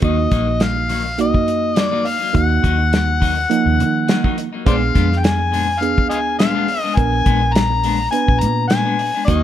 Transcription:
0.02 D#2 D#3 F#3 A#3 D#4 F#4 D#5, kick, closed hi-hat
0.18 muted clean electric guitar stroke
0.31 A#1 D#3 F#3 A#3 D#4, kick, snare, closed hi-hat
0.47 muted clean electric guitar stroke
0.60 F5, muted clean electric guitar stroke, snare, closed hi-hat
0.76 muted clean electric guitar stroke
0.89 D#3 F#3 A#3 D#4, open hi-hat
1.05 muted clean electric guitar stroke
1.18 A#3 D#4 F#4 D#5, closed hi-hat
1.34 F#2, muted clean electric guitar stroke, kick
1.47 muted clean electric guitar stroke, closed hi-hat
1.76 D#3 F#3 A#3 D#4 D5, snare, closed hi-hat
1.92 D#3 F#3 A#3 D#4
2.05 F5, muted clean electric guitar stroke, open hi-hat
2.20 F#3 A#3 D#4
2.33 D#2 A#3 D#4 F#4 F#5, kick, closed hi-hat
2.49 muted clean electric guitar stroke
2.63 D#2 D#3 F#3 A#3 D#4, kick, closed hi-hat
2.79 muted clean electric guitar stroke
2.92 muted clean electric guitar stroke, snare, closed hi-hat
3.08 muted clean electric guitar stroke
3.20 D#3 F#3 A#3 D#4, kick, open hi-hat
3.37 muted clean electric guitar stroke
3.50 F3 A#3 D#4, closed hi-hat
3.66 D#2, muted clean electric guitar stroke
3.79 D#3, muted clean electric guitar stroke, closed hi-hat
4.08 D#3 F#3 A#3 D#4, snare, closed hi-hat
4.24 D#3 F#3 A#3 D#4, kick
4.38 muted clean electric guitar stroke, closed hi-hat
4.53 F#3 A#3 D#4
4.66 A#1 A#2 G#3 B3 D4 G#4 C5 D5 F5, kick, closed hi-hat
4.82 muted clean electric guitar stroke
4.94 F2 A#2 G#3 B3 D4, kick, snare, closed hi-hat
5.10 muted clean electric guitar stroke, snare
5.18 G5
5.23 G#5, muted clean electric guitar stroke, snare, closed hi-hat
5.39 muted clean electric guitar stroke
5.52 A#2 G#3 B3 D4, open hi-hat
5.68 muted clean electric guitar stroke
5.81 B3 D4 G#4 F5, closed hi-hat
5.97 D2, muted clean electric guitar stroke, kick
6.10 D#5 F5 G#5, muted clean electric guitar stroke, closed hi-hat
6.38 A#2 G#3 B3 D4 F5, snare, closed hi-hat
6.55 A#2 G#3 B3 D4
6.68 muted clean electric guitar stroke, open hi-hat
6.81 B3 D4 D#5
6.86 G#3
6.95 A#1 B3 D4 A#4 G#5, kick, closed hi-hat
7.13 muted clean electric guitar stroke
7.26 A#1 A#2 G#3 B3 D4, kick, closed hi-hat
7.42 muted clean electric guitar stroke
7.53 A#5, muted clean electric guitar stroke, snare, closed hi-hat
7.70 muted clean electric guitar stroke
7.83 A#2 G#3 B3 D4, open hi-hat
7.99 muted clean electric guitar stroke
8.11 B3 D4 B4 G#5, closed hi-hat
8.28 A#1, muted clean electric guitar stroke, kick
8.40 A#2 A#5, muted clean electric guitar stroke, closed hi-hat
8.68 A#2 G#3 B3 G#5, snare, closed hi-hat
8.72 D4
8.85 A#2 G#3 B3 D4
8.99 muted clean electric guitar stroke, open hi-hat
9.15 G#3 B3 D4
9.25 D#2 D#3 F#3 A#3 D#4 F#4 D#5, kick, closed hi-hat
9.29 D#4

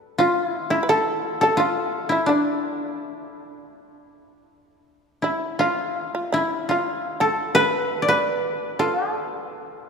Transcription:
Already playing: A4
0.18 F4
0.47 E4
0.70 E4
0.83 B4
0.89 A4
1.41 A4
1.57 F4
2.09 E4
2.26 D4
5.22 E4
5.59 F4
6.00 E4
6.15 F4
6.32 E4
6.69 F4
7.20 A4
7.55 B4
7.88 A4
8.02 D5
8.08 B4
8.79 F4 A4
9.11 A4

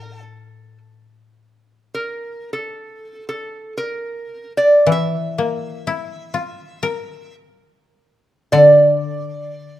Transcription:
Already playing: A2
0.01 A#4
0.14 A4
1.94 A#4
2.53 A4
3.29 A4
3.77 A#4
4.57 D5
4.86 E3
4.92 E5
5.38 A#3
5.87 E4
6.34 F4
6.83 A#4
8.52 D3 D5

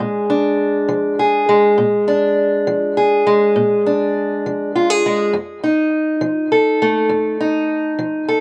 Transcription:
Already playing: G#3 D4 G#4
0.00 A#2
0.30 D4
0.89 F3
1.19 G#4
1.49 G#3
1.78 A#2
2.08 D4
2.67 F3
2.97 G#4
3.27 G#3
3.56 A#2
3.86 D4
4.46 F3
4.76 F4
4.90 G#4
5.06 G#3
5.33 F2
5.64 D#4
6.21 F3
6.52 A4
6.82 A3
7.09 F2
7.40 D#4
7.99 F3
8.29 A4

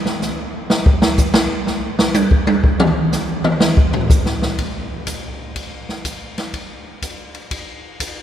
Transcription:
0.06 snare
0.22 snare, hi-hat pedal
0.70 snare
0.86 kick
1.02 snare
1.18 kick, hi-hat pedal
1.34 snare
1.67 snare
1.99 snare
2.14 hi-hat pedal, high tom
2.31 kick
2.47 high tom
2.64 kick
2.80 mid tom
3.12 snare, hi-hat pedal
3.44 mid tom
3.60 snare
3.77 kick
3.93 floor tom
4.10 kick, hi-hat pedal
4.26 snare
4.42 snare
4.58 kick, ride
5.07 kick, hi-hat pedal, ride
5.56 kick, ride
5.89 snare
6.05 kick, hi-hat pedal, ride
6.38 snare, ride
6.53 kick, ride
7.02 kick, hi-hat pedal, ride
7.34 ride
7.51 kick, ride
8.00 kick, hi-hat pedal, ride

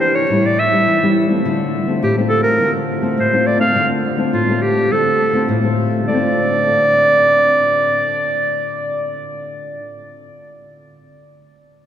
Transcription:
Already playing: E3 A#3 D4 G4
0.01 C5
0.15 C#5
0.30 A2 G3 C#4 E4
0.46 D5
0.59 E5
0.72 G3 C#4 E4
0.88 E3
1.03 G3 C#4 E4
1.30 A3 C4 F4
1.45 D3
1.87 A3 C4 F4
2.03 A2 G4
2.18 A3 C4 F4
2.28 A4
2.43 A#4
2.61 D3 A3 C4 F4
3.02 A3 C4 F4
3.18 A2 C5
3.33 A3 C4 F4
3.47 D5
3.59 A3 C4 F4 F5
3.76 D3 A3 C4 F4
4.18 A3 C4 F4
4.33 A2 F4
4.49 A3 C4 F4
4.62 G4
4.91 D3 A3 C4 F4 A4
5.33 A3 C4 F4
5.48 A2
5.64 A3 C4 F4
6.03 D3
6.08 A3 D5
6.13 C4
6.17 F4

